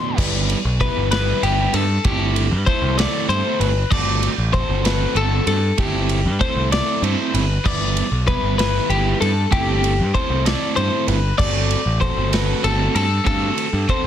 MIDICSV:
0, 0, Header, 1, 6, 480
1, 0, Start_track
1, 0, Tempo, 623053
1, 138, Time_signature, 6, 3, 24, 8
1, 10839, End_track
2, 0, Start_track
2, 0, Title_t, "Clean electric guitar"
2, 0, Program_c, 0, 27
2, 0, Note_on_c, 0, 84, 74
2, 140, Note_off_c, 0, 84, 0
2, 140, Note_on_c, 0, 74, 92
2, 619, Note_off_c, 0, 74, 0
2, 622, Note_on_c, 0, 71, 80
2, 849, Note_off_c, 0, 71, 0
2, 858, Note_on_c, 0, 71, 95
2, 1098, Note_off_c, 0, 71, 0
2, 1103, Note_on_c, 0, 67, 88
2, 1342, Note_off_c, 0, 67, 0
2, 1342, Note_on_c, 0, 69, 82
2, 1577, Note_off_c, 0, 69, 0
2, 1577, Note_on_c, 0, 67, 98
2, 2053, Note_on_c, 0, 72, 79
2, 2058, Note_off_c, 0, 67, 0
2, 2294, Note_off_c, 0, 72, 0
2, 2294, Note_on_c, 0, 74, 93
2, 2533, Note_off_c, 0, 74, 0
2, 2536, Note_on_c, 0, 72, 93
2, 2774, Note_off_c, 0, 72, 0
2, 2774, Note_on_c, 0, 71, 85
2, 3009, Note_off_c, 0, 71, 0
2, 3009, Note_on_c, 0, 74, 99
2, 3488, Note_off_c, 0, 74, 0
2, 3491, Note_on_c, 0, 72, 83
2, 3735, Note_off_c, 0, 72, 0
2, 3735, Note_on_c, 0, 71, 89
2, 3976, Note_off_c, 0, 71, 0
2, 3982, Note_on_c, 0, 69, 88
2, 4209, Note_off_c, 0, 69, 0
2, 4218, Note_on_c, 0, 69, 86
2, 4463, Note_off_c, 0, 69, 0
2, 4463, Note_on_c, 0, 67, 97
2, 4937, Note_on_c, 0, 72, 81
2, 4939, Note_off_c, 0, 67, 0
2, 5176, Note_off_c, 0, 72, 0
2, 5180, Note_on_c, 0, 74, 92
2, 5417, Note_off_c, 0, 74, 0
2, 5417, Note_on_c, 0, 72, 85
2, 5655, Note_off_c, 0, 72, 0
2, 5655, Note_on_c, 0, 71, 82
2, 5899, Note_off_c, 0, 71, 0
2, 5899, Note_on_c, 0, 74, 95
2, 6372, Note_off_c, 0, 74, 0
2, 6375, Note_on_c, 0, 71, 79
2, 6603, Note_off_c, 0, 71, 0
2, 6612, Note_on_c, 0, 71, 94
2, 6853, Note_off_c, 0, 71, 0
2, 6854, Note_on_c, 0, 67, 86
2, 7091, Note_off_c, 0, 67, 0
2, 7094, Note_on_c, 0, 69, 83
2, 7332, Note_off_c, 0, 69, 0
2, 7335, Note_on_c, 0, 67, 95
2, 7815, Note_off_c, 0, 67, 0
2, 7815, Note_on_c, 0, 72, 77
2, 8058, Note_off_c, 0, 72, 0
2, 8058, Note_on_c, 0, 74, 94
2, 8288, Note_off_c, 0, 74, 0
2, 8291, Note_on_c, 0, 72, 87
2, 8533, Note_off_c, 0, 72, 0
2, 8533, Note_on_c, 0, 71, 84
2, 8765, Note_off_c, 0, 71, 0
2, 8768, Note_on_c, 0, 74, 93
2, 9250, Note_off_c, 0, 74, 0
2, 9253, Note_on_c, 0, 72, 82
2, 9502, Note_off_c, 0, 72, 0
2, 9502, Note_on_c, 0, 71, 98
2, 9739, Note_off_c, 0, 71, 0
2, 9739, Note_on_c, 0, 69, 90
2, 9967, Note_off_c, 0, 69, 0
2, 9976, Note_on_c, 0, 69, 89
2, 10213, Note_off_c, 0, 69, 0
2, 10222, Note_on_c, 0, 69, 102
2, 10701, Note_off_c, 0, 69, 0
2, 10707, Note_on_c, 0, 72, 79
2, 10839, Note_off_c, 0, 72, 0
2, 10839, End_track
3, 0, Start_track
3, 0, Title_t, "Clean electric guitar"
3, 0, Program_c, 1, 27
3, 0, Note_on_c, 1, 45, 58
3, 0, Note_on_c, 1, 62, 58
3, 0, Note_on_c, 1, 69, 45
3, 116, Note_off_c, 1, 62, 0
3, 137, Note_off_c, 1, 45, 0
3, 142, Note_off_c, 1, 69, 0
3, 10839, End_track
4, 0, Start_track
4, 0, Title_t, "Overdriven electric guitar"
4, 0, Program_c, 2, 29
4, 0, Note_on_c, 2, 47, 57
4, 0, Note_on_c, 2, 54, 60
4, 0, Note_on_c, 2, 59, 68
4, 0, Note_on_c, 2, 62, 66
4, 123, Note_off_c, 2, 59, 0
4, 129, Note_off_c, 2, 47, 0
4, 130, Note_off_c, 2, 54, 0
4, 132, Note_on_c, 2, 55, 87
4, 133, Note_on_c, 2, 59, 84
4, 134, Note_off_c, 2, 62, 0
4, 140, Note_on_c, 2, 71, 98
4, 141, Note_on_c, 2, 64, 96
4, 447, Note_off_c, 2, 55, 0
4, 447, Note_off_c, 2, 59, 0
4, 451, Note_off_c, 2, 71, 0
4, 452, Note_off_c, 2, 64, 0
4, 621, Note_on_c, 2, 55, 80
4, 621, Note_on_c, 2, 59, 74
4, 625, Note_on_c, 2, 64, 79
4, 629, Note_on_c, 2, 71, 85
4, 855, Note_off_c, 2, 64, 0
4, 855, Note_off_c, 2, 71, 0
4, 859, Note_off_c, 2, 59, 0
4, 860, Note_off_c, 2, 55, 0
4, 864, Note_on_c, 2, 64, 93
4, 864, Note_on_c, 2, 71, 91
4, 871, Note_on_c, 2, 59, 88
4, 872, Note_on_c, 2, 55, 84
4, 1091, Note_off_c, 2, 55, 0
4, 1093, Note_off_c, 2, 59, 0
4, 1097, Note_off_c, 2, 64, 0
4, 1100, Note_on_c, 2, 55, 76
4, 1101, Note_off_c, 2, 71, 0
4, 1102, Note_on_c, 2, 59, 85
4, 1107, Note_on_c, 2, 64, 76
4, 1109, Note_on_c, 2, 71, 91
4, 1411, Note_off_c, 2, 55, 0
4, 1412, Note_off_c, 2, 59, 0
4, 1414, Note_off_c, 2, 64, 0
4, 1416, Note_off_c, 2, 71, 0
4, 1577, Note_on_c, 2, 57, 95
4, 1582, Note_on_c, 2, 60, 89
4, 1585, Note_on_c, 2, 64, 102
4, 1586, Note_on_c, 2, 69, 100
4, 1889, Note_off_c, 2, 57, 0
4, 1892, Note_off_c, 2, 60, 0
4, 1893, Note_off_c, 2, 64, 0
4, 1894, Note_off_c, 2, 69, 0
4, 2057, Note_on_c, 2, 57, 77
4, 2061, Note_on_c, 2, 60, 76
4, 2064, Note_on_c, 2, 64, 90
4, 2068, Note_on_c, 2, 69, 78
4, 2290, Note_off_c, 2, 69, 0
4, 2293, Note_off_c, 2, 64, 0
4, 2297, Note_off_c, 2, 57, 0
4, 2297, Note_off_c, 2, 60, 0
4, 2299, Note_on_c, 2, 69, 102
4, 2302, Note_on_c, 2, 64, 100
4, 2307, Note_on_c, 2, 60, 89
4, 2309, Note_on_c, 2, 57, 78
4, 2531, Note_off_c, 2, 57, 0
4, 2534, Note_off_c, 2, 60, 0
4, 2538, Note_off_c, 2, 69, 0
4, 2540, Note_off_c, 2, 64, 0
4, 2540, Note_on_c, 2, 57, 87
4, 2543, Note_on_c, 2, 60, 81
4, 2548, Note_on_c, 2, 64, 85
4, 2549, Note_on_c, 2, 69, 90
4, 2851, Note_off_c, 2, 57, 0
4, 2852, Note_off_c, 2, 60, 0
4, 2855, Note_off_c, 2, 64, 0
4, 2855, Note_off_c, 2, 69, 0
4, 3010, Note_on_c, 2, 57, 99
4, 3017, Note_on_c, 2, 60, 99
4, 3017, Note_on_c, 2, 66, 99
4, 3022, Note_on_c, 2, 69, 99
4, 3325, Note_off_c, 2, 57, 0
4, 3329, Note_off_c, 2, 60, 0
4, 3329, Note_off_c, 2, 66, 0
4, 3331, Note_off_c, 2, 69, 0
4, 3488, Note_on_c, 2, 57, 77
4, 3494, Note_on_c, 2, 60, 84
4, 3496, Note_on_c, 2, 66, 86
4, 3501, Note_on_c, 2, 69, 86
4, 3723, Note_off_c, 2, 69, 0
4, 3728, Note_off_c, 2, 66, 0
4, 3730, Note_off_c, 2, 60, 0
4, 3732, Note_off_c, 2, 57, 0
4, 3733, Note_on_c, 2, 69, 102
4, 3738, Note_on_c, 2, 66, 92
4, 3739, Note_on_c, 2, 60, 92
4, 3742, Note_on_c, 2, 57, 80
4, 3962, Note_off_c, 2, 57, 0
4, 3965, Note_off_c, 2, 60, 0
4, 3969, Note_off_c, 2, 66, 0
4, 3972, Note_off_c, 2, 69, 0
4, 3972, Note_on_c, 2, 57, 80
4, 3974, Note_on_c, 2, 60, 81
4, 3979, Note_on_c, 2, 66, 82
4, 3981, Note_on_c, 2, 69, 90
4, 4286, Note_off_c, 2, 57, 0
4, 4287, Note_off_c, 2, 60, 0
4, 4289, Note_off_c, 2, 66, 0
4, 4291, Note_off_c, 2, 69, 0
4, 4452, Note_on_c, 2, 57, 84
4, 4455, Note_on_c, 2, 60, 93
4, 4458, Note_on_c, 2, 64, 90
4, 4464, Note_on_c, 2, 69, 101
4, 4766, Note_off_c, 2, 57, 0
4, 4768, Note_off_c, 2, 60, 0
4, 4769, Note_off_c, 2, 64, 0
4, 4772, Note_off_c, 2, 69, 0
4, 4925, Note_on_c, 2, 57, 77
4, 4930, Note_on_c, 2, 60, 77
4, 4933, Note_on_c, 2, 64, 82
4, 4933, Note_on_c, 2, 69, 80
4, 5156, Note_off_c, 2, 69, 0
4, 5163, Note_off_c, 2, 64, 0
4, 5165, Note_off_c, 2, 60, 0
4, 5166, Note_on_c, 2, 69, 101
4, 5170, Note_off_c, 2, 57, 0
4, 5172, Note_on_c, 2, 64, 85
4, 5174, Note_on_c, 2, 60, 86
4, 5179, Note_on_c, 2, 57, 81
4, 5400, Note_off_c, 2, 57, 0
4, 5405, Note_off_c, 2, 60, 0
4, 5406, Note_off_c, 2, 64, 0
4, 5409, Note_on_c, 2, 57, 73
4, 5411, Note_off_c, 2, 69, 0
4, 5414, Note_on_c, 2, 60, 79
4, 5415, Note_on_c, 2, 64, 84
4, 5420, Note_on_c, 2, 69, 77
4, 5724, Note_off_c, 2, 57, 0
4, 5727, Note_off_c, 2, 60, 0
4, 5727, Note_off_c, 2, 64, 0
4, 5730, Note_off_c, 2, 69, 0
4, 5887, Note_on_c, 2, 55, 80
4, 5890, Note_on_c, 2, 59, 91
4, 5894, Note_on_c, 2, 64, 91
4, 5895, Note_on_c, 2, 71, 94
4, 6203, Note_off_c, 2, 55, 0
4, 6204, Note_off_c, 2, 59, 0
4, 6206, Note_off_c, 2, 64, 0
4, 6207, Note_off_c, 2, 71, 0
4, 6378, Note_on_c, 2, 55, 75
4, 6382, Note_on_c, 2, 59, 77
4, 6383, Note_on_c, 2, 64, 74
4, 6387, Note_on_c, 2, 71, 79
4, 6605, Note_off_c, 2, 71, 0
4, 6608, Note_off_c, 2, 64, 0
4, 6611, Note_off_c, 2, 59, 0
4, 6614, Note_off_c, 2, 55, 0
4, 6615, Note_on_c, 2, 71, 96
4, 6617, Note_on_c, 2, 64, 93
4, 6620, Note_on_c, 2, 59, 84
4, 6623, Note_on_c, 2, 55, 81
4, 6849, Note_off_c, 2, 55, 0
4, 6853, Note_off_c, 2, 59, 0
4, 6853, Note_off_c, 2, 64, 0
4, 6855, Note_off_c, 2, 71, 0
4, 6858, Note_on_c, 2, 55, 77
4, 6862, Note_on_c, 2, 59, 75
4, 6862, Note_on_c, 2, 64, 80
4, 6866, Note_on_c, 2, 71, 86
4, 7168, Note_off_c, 2, 55, 0
4, 7170, Note_off_c, 2, 59, 0
4, 7170, Note_off_c, 2, 64, 0
4, 7172, Note_off_c, 2, 71, 0
4, 7326, Note_on_c, 2, 57, 82
4, 7329, Note_on_c, 2, 60, 99
4, 7331, Note_on_c, 2, 64, 104
4, 7334, Note_on_c, 2, 69, 90
4, 7642, Note_off_c, 2, 57, 0
4, 7644, Note_off_c, 2, 60, 0
4, 7645, Note_off_c, 2, 64, 0
4, 7647, Note_off_c, 2, 69, 0
4, 7812, Note_on_c, 2, 57, 78
4, 7816, Note_on_c, 2, 60, 77
4, 7816, Note_on_c, 2, 64, 85
4, 7816, Note_on_c, 2, 69, 83
4, 8041, Note_off_c, 2, 69, 0
4, 8043, Note_off_c, 2, 64, 0
4, 8044, Note_off_c, 2, 60, 0
4, 8049, Note_off_c, 2, 57, 0
4, 8050, Note_on_c, 2, 69, 106
4, 8053, Note_on_c, 2, 60, 93
4, 8053, Note_on_c, 2, 64, 98
4, 8058, Note_on_c, 2, 57, 79
4, 8278, Note_off_c, 2, 57, 0
4, 8282, Note_off_c, 2, 60, 0
4, 8287, Note_off_c, 2, 64, 0
4, 8288, Note_on_c, 2, 57, 71
4, 8289, Note_off_c, 2, 69, 0
4, 8291, Note_on_c, 2, 60, 82
4, 8296, Note_on_c, 2, 64, 81
4, 8299, Note_on_c, 2, 69, 82
4, 8603, Note_off_c, 2, 57, 0
4, 8605, Note_off_c, 2, 60, 0
4, 8608, Note_off_c, 2, 64, 0
4, 8609, Note_off_c, 2, 69, 0
4, 8773, Note_on_c, 2, 57, 90
4, 8776, Note_on_c, 2, 60, 87
4, 8779, Note_on_c, 2, 66, 94
4, 8782, Note_on_c, 2, 69, 102
4, 9086, Note_off_c, 2, 57, 0
4, 9088, Note_off_c, 2, 60, 0
4, 9090, Note_off_c, 2, 66, 0
4, 9091, Note_off_c, 2, 69, 0
4, 9249, Note_on_c, 2, 57, 74
4, 9253, Note_on_c, 2, 60, 75
4, 9255, Note_on_c, 2, 66, 76
4, 9258, Note_on_c, 2, 69, 82
4, 9485, Note_off_c, 2, 69, 0
4, 9487, Note_off_c, 2, 60, 0
4, 9487, Note_off_c, 2, 66, 0
4, 9490, Note_off_c, 2, 57, 0
4, 9494, Note_on_c, 2, 69, 102
4, 9496, Note_on_c, 2, 60, 96
4, 9496, Note_on_c, 2, 66, 91
4, 9500, Note_on_c, 2, 57, 86
4, 9719, Note_off_c, 2, 57, 0
4, 9722, Note_off_c, 2, 60, 0
4, 9724, Note_off_c, 2, 66, 0
4, 9727, Note_off_c, 2, 69, 0
4, 9729, Note_on_c, 2, 57, 80
4, 9731, Note_on_c, 2, 60, 82
4, 9734, Note_on_c, 2, 66, 85
4, 9737, Note_on_c, 2, 69, 90
4, 10045, Note_off_c, 2, 57, 0
4, 10046, Note_off_c, 2, 60, 0
4, 10048, Note_off_c, 2, 66, 0
4, 10049, Note_off_c, 2, 69, 0
4, 10206, Note_on_c, 2, 57, 85
4, 10209, Note_on_c, 2, 60, 92
4, 10211, Note_on_c, 2, 66, 94
4, 10217, Note_on_c, 2, 69, 106
4, 10525, Note_off_c, 2, 57, 0
4, 10526, Note_off_c, 2, 60, 0
4, 10527, Note_off_c, 2, 66, 0
4, 10530, Note_off_c, 2, 69, 0
4, 10694, Note_on_c, 2, 57, 73
4, 10698, Note_on_c, 2, 60, 85
4, 10698, Note_on_c, 2, 66, 76
4, 10703, Note_on_c, 2, 69, 86
4, 10839, Note_off_c, 2, 57, 0
4, 10839, Note_off_c, 2, 60, 0
4, 10839, Note_off_c, 2, 66, 0
4, 10839, Note_off_c, 2, 69, 0
4, 10839, End_track
5, 0, Start_track
5, 0, Title_t, "Picked electric bass"
5, 0, Program_c, 3, 34
5, 140, Note_on_c, 3, 31, 99
5, 412, Note_off_c, 3, 31, 0
5, 500, Note_on_c, 3, 35, 93
5, 681, Note_off_c, 3, 35, 0
5, 746, Note_on_c, 3, 31, 88
5, 1016, Note_off_c, 3, 31, 0
5, 1100, Note_on_c, 3, 31, 99
5, 1281, Note_off_c, 3, 31, 0
5, 1338, Note_on_c, 3, 43, 101
5, 1520, Note_off_c, 3, 43, 0
5, 1578, Note_on_c, 3, 31, 101
5, 1936, Note_on_c, 3, 43, 98
5, 1947, Note_off_c, 3, 31, 0
5, 2027, Note_off_c, 3, 43, 0
5, 2171, Note_on_c, 3, 36, 98
5, 2355, Note_off_c, 3, 36, 0
5, 2533, Note_on_c, 3, 43, 96
5, 2625, Note_off_c, 3, 43, 0
5, 2772, Note_on_c, 3, 31, 116
5, 2956, Note_off_c, 3, 31, 0
5, 3016, Note_on_c, 3, 31, 100
5, 3289, Note_off_c, 3, 31, 0
5, 3374, Note_on_c, 3, 33, 98
5, 3557, Note_off_c, 3, 33, 0
5, 3614, Note_on_c, 3, 31, 95
5, 3888, Note_off_c, 3, 31, 0
5, 3966, Note_on_c, 3, 31, 96
5, 4152, Note_off_c, 3, 31, 0
5, 4212, Note_on_c, 3, 43, 102
5, 4395, Note_off_c, 3, 43, 0
5, 4454, Note_on_c, 3, 31, 99
5, 4818, Note_on_c, 3, 43, 91
5, 4830, Note_off_c, 3, 31, 0
5, 4908, Note_off_c, 3, 43, 0
5, 5053, Note_on_c, 3, 36, 92
5, 5236, Note_off_c, 3, 36, 0
5, 5410, Note_on_c, 3, 43, 88
5, 5503, Note_off_c, 3, 43, 0
5, 5654, Note_on_c, 3, 31, 107
5, 5836, Note_off_c, 3, 31, 0
5, 5897, Note_on_c, 3, 31, 98
5, 6169, Note_off_c, 3, 31, 0
5, 6252, Note_on_c, 3, 35, 89
5, 6435, Note_off_c, 3, 35, 0
5, 6493, Note_on_c, 3, 31, 86
5, 6766, Note_off_c, 3, 31, 0
5, 6852, Note_on_c, 3, 31, 91
5, 7035, Note_off_c, 3, 31, 0
5, 7098, Note_on_c, 3, 43, 94
5, 7278, Note_off_c, 3, 43, 0
5, 7338, Note_on_c, 3, 31, 103
5, 7700, Note_on_c, 3, 43, 96
5, 7712, Note_off_c, 3, 31, 0
5, 7789, Note_off_c, 3, 43, 0
5, 7934, Note_on_c, 3, 36, 98
5, 8116, Note_off_c, 3, 36, 0
5, 8298, Note_on_c, 3, 43, 100
5, 8388, Note_off_c, 3, 43, 0
5, 8533, Note_on_c, 3, 31, 113
5, 8716, Note_off_c, 3, 31, 0
5, 8776, Note_on_c, 3, 31, 97
5, 9049, Note_off_c, 3, 31, 0
5, 9134, Note_on_c, 3, 33, 91
5, 9317, Note_off_c, 3, 33, 0
5, 9376, Note_on_c, 3, 31, 99
5, 9649, Note_off_c, 3, 31, 0
5, 9738, Note_on_c, 3, 31, 96
5, 9919, Note_off_c, 3, 31, 0
5, 9977, Note_on_c, 3, 43, 101
5, 10159, Note_off_c, 3, 43, 0
5, 10217, Note_on_c, 3, 43, 102
5, 10399, Note_off_c, 3, 43, 0
5, 10579, Note_on_c, 3, 43, 97
5, 10670, Note_off_c, 3, 43, 0
5, 10839, End_track
6, 0, Start_track
6, 0, Title_t, "Drums"
6, 140, Note_on_c, 9, 36, 127
6, 142, Note_on_c, 9, 49, 123
6, 217, Note_off_c, 9, 36, 0
6, 219, Note_off_c, 9, 49, 0
6, 382, Note_on_c, 9, 51, 82
6, 459, Note_off_c, 9, 51, 0
6, 620, Note_on_c, 9, 36, 80
6, 623, Note_on_c, 9, 51, 83
6, 697, Note_off_c, 9, 36, 0
6, 700, Note_off_c, 9, 51, 0
6, 860, Note_on_c, 9, 51, 121
6, 869, Note_on_c, 9, 38, 115
6, 937, Note_off_c, 9, 51, 0
6, 946, Note_off_c, 9, 38, 0
6, 1103, Note_on_c, 9, 51, 86
6, 1180, Note_off_c, 9, 51, 0
6, 1338, Note_on_c, 9, 51, 86
6, 1415, Note_off_c, 9, 51, 0
6, 1576, Note_on_c, 9, 51, 117
6, 1578, Note_on_c, 9, 36, 122
6, 1653, Note_off_c, 9, 51, 0
6, 1655, Note_off_c, 9, 36, 0
6, 1819, Note_on_c, 9, 51, 81
6, 1896, Note_off_c, 9, 51, 0
6, 2057, Note_on_c, 9, 36, 86
6, 2057, Note_on_c, 9, 51, 78
6, 2134, Note_off_c, 9, 36, 0
6, 2134, Note_off_c, 9, 51, 0
6, 2301, Note_on_c, 9, 51, 108
6, 2309, Note_on_c, 9, 38, 118
6, 2378, Note_off_c, 9, 51, 0
6, 2386, Note_off_c, 9, 38, 0
6, 2543, Note_on_c, 9, 51, 84
6, 2620, Note_off_c, 9, 51, 0
6, 2781, Note_on_c, 9, 51, 79
6, 2858, Note_off_c, 9, 51, 0
6, 3017, Note_on_c, 9, 36, 125
6, 3019, Note_on_c, 9, 57, 118
6, 3094, Note_off_c, 9, 36, 0
6, 3096, Note_off_c, 9, 57, 0
6, 3256, Note_on_c, 9, 51, 76
6, 3333, Note_off_c, 9, 51, 0
6, 3495, Note_on_c, 9, 51, 75
6, 3496, Note_on_c, 9, 36, 82
6, 3572, Note_off_c, 9, 51, 0
6, 3573, Note_off_c, 9, 36, 0
6, 3737, Note_on_c, 9, 51, 105
6, 3745, Note_on_c, 9, 38, 113
6, 3814, Note_off_c, 9, 51, 0
6, 3822, Note_off_c, 9, 38, 0
6, 3975, Note_on_c, 9, 51, 77
6, 4052, Note_off_c, 9, 51, 0
6, 4214, Note_on_c, 9, 51, 81
6, 4291, Note_off_c, 9, 51, 0
6, 4453, Note_on_c, 9, 51, 114
6, 4456, Note_on_c, 9, 36, 114
6, 4530, Note_off_c, 9, 51, 0
6, 4533, Note_off_c, 9, 36, 0
6, 4695, Note_on_c, 9, 51, 83
6, 4772, Note_off_c, 9, 51, 0
6, 4936, Note_on_c, 9, 36, 81
6, 4937, Note_on_c, 9, 51, 85
6, 5013, Note_off_c, 9, 36, 0
6, 5014, Note_off_c, 9, 51, 0
6, 5180, Note_on_c, 9, 51, 116
6, 5189, Note_on_c, 9, 38, 109
6, 5257, Note_off_c, 9, 51, 0
6, 5266, Note_off_c, 9, 38, 0
6, 5420, Note_on_c, 9, 51, 87
6, 5497, Note_off_c, 9, 51, 0
6, 5659, Note_on_c, 9, 51, 90
6, 5736, Note_off_c, 9, 51, 0
6, 5898, Note_on_c, 9, 36, 119
6, 5901, Note_on_c, 9, 49, 107
6, 5975, Note_off_c, 9, 36, 0
6, 5978, Note_off_c, 9, 49, 0
6, 6138, Note_on_c, 9, 51, 83
6, 6215, Note_off_c, 9, 51, 0
6, 6377, Note_on_c, 9, 36, 82
6, 6377, Note_on_c, 9, 51, 87
6, 6454, Note_off_c, 9, 36, 0
6, 6454, Note_off_c, 9, 51, 0
6, 6619, Note_on_c, 9, 51, 108
6, 6627, Note_on_c, 9, 38, 113
6, 6696, Note_off_c, 9, 51, 0
6, 6704, Note_off_c, 9, 38, 0
6, 6858, Note_on_c, 9, 51, 83
6, 6935, Note_off_c, 9, 51, 0
6, 7102, Note_on_c, 9, 51, 78
6, 7179, Note_off_c, 9, 51, 0
6, 7337, Note_on_c, 9, 36, 122
6, 7338, Note_on_c, 9, 51, 112
6, 7414, Note_off_c, 9, 36, 0
6, 7415, Note_off_c, 9, 51, 0
6, 7580, Note_on_c, 9, 51, 77
6, 7657, Note_off_c, 9, 51, 0
6, 7817, Note_on_c, 9, 36, 82
6, 7820, Note_on_c, 9, 51, 81
6, 7894, Note_off_c, 9, 36, 0
6, 7897, Note_off_c, 9, 51, 0
6, 8060, Note_on_c, 9, 51, 106
6, 8068, Note_on_c, 9, 38, 118
6, 8137, Note_off_c, 9, 51, 0
6, 8145, Note_off_c, 9, 38, 0
6, 8296, Note_on_c, 9, 51, 79
6, 8373, Note_off_c, 9, 51, 0
6, 8536, Note_on_c, 9, 51, 81
6, 8613, Note_off_c, 9, 51, 0
6, 8776, Note_on_c, 9, 36, 123
6, 8778, Note_on_c, 9, 57, 115
6, 8853, Note_off_c, 9, 36, 0
6, 8855, Note_off_c, 9, 57, 0
6, 9018, Note_on_c, 9, 51, 81
6, 9095, Note_off_c, 9, 51, 0
6, 9257, Note_on_c, 9, 36, 81
6, 9260, Note_on_c, 9, 51, 89
6, 9334, Note_off_c, 9, 36, 0
6, 9337, Note_off_c, 9, 51, 0
6, 9498, Note_on_c, 9, 51, 119
6, 9507, Note_on_c, 9, 38, 112
6, 9575, Note_off_c, 9, 51, 0
6, 9584, Note_off_c, 9, 38, 0
6, 9739, Note_on_c, 9, 51, 90
6, 9816, Note_off_c, 9, 51, 0
6, 9981, Note_on_c, 9, 51, 87
6, 10058, Note_off_c, 9, 51, 0
6, 10220, Note_on_c, 9, 36, 123
6, 10222, Note_on_c, 9, 51, 120
6, 10297, Note_off_c, 9, 36, 0
6, 10299, Note_off_c, 9, 51, 0
6, 10459, Note_on_c, 9, 51, 84
6, 10536, Note_off_c, 9, 51, 0
6, 10700, Note_on_c, 9, 36, 81
6, 10701, Note_on_c, 9, 51, 83
6, 10777, Note_off_c, 9, 36, 0
6, 10778, Note_off_c, 9, 51, 0
6, 10839, End_track
0, 0, End_of_file